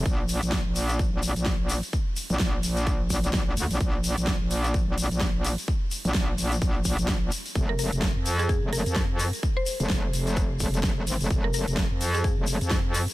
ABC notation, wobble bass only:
X:1
M:4/4
L:1/16
Q:"Swing 16ths" 1/4=128
K:Bbdor
V:1 name="Wobble bass" clef=bass
B,,,3 B,,,2 B,,,4 B,,,2 B,,,4 z | z3 B,,, B,,,2 B,,,4 B,,,4 =D,, B,,, | B,,,3 B,,,2 B,,,4 B,,,2 B,,,4 z | z3 B,,, B,,,2 B,,,2 B,,,3 B,,,3 z2 |
F,,,3 F,,,2 F,,4 F,,,2 F,,4 z | z3 F,,, F,,,2 F,,,4 F,,,4 A,,, F,,, | F,,,3 F,,,2 F,,4 F,,,2 F,,4 z |]